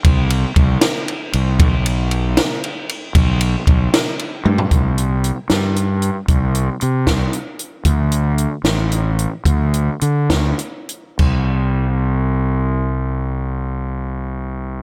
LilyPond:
<<
  \new Staff \with { instrumentName = "Fingered electric bass" } { \clef bass \time 6/8 \key d \dorian \tempo 4. = 76 c,4 c,8 r4 c,8 | b,,2 r4 | b,,4 b,,8 r4 g,8 | c,4. g,4. |
c,4 c8 c,8 r4 | d,4. a,,4. | d,4 d8 d,8 r4 | c,2.~ |
c,2. | }
  \new DrumStaff \with { instrumentName = "Drums" } \drummode { \time 6/8 <bd cymr>8 cymr8 <bd cymr>8 <cymr sn>8 cymr8 cymr8 | <bd cymr>8 cymr8 cymr8 <cymr sn>8 cymr8 cymr8 | <bd cymr>8 cymr8 <bd cymr>8 <cymr sn>8 cymr8 tommh16 tomfh16 | <hh bd>8 hh8 hh8 <hh sn>8 hh8 hh8 |
<hh bd>8 hh8 hh8 <hh bd sn>8 hh8 hh8 | <hh bd>8 hh8 hh8 <hh sn>8 hh8 hh8 | <hh bd>8 hh8 hh8 <hh bd sn>8 hh8 hh8 | <cymc bd>4. r4. |
r4. r4. | }
>>